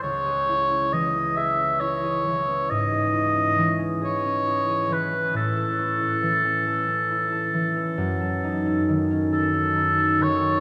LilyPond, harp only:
\new Staff \with { instrumentName = "Harp" } { \time 12/8 \key cis \minor \tempo 4. = 45 <cis, e' gis'>16 gis'16 e'16 cis'16 e16 cis'16 gis'16 cis'16 e'16 gis'16 e16 cis'16 gis,16 gis'16 e'16 cis'16 e16 cis'16 gis'16 cis'16 e'16 gis'16 e16 cis'16 | a,16 a'16 e'16 cis'16 e16 cis'16 a'16 cis'16 e'16 a'16 e16 cis'16 fis,16 a'16 dis'16 cis'16 dis16 cis'16 a'16 cis'16 dis'16 a'16 dis16 cis'16 | }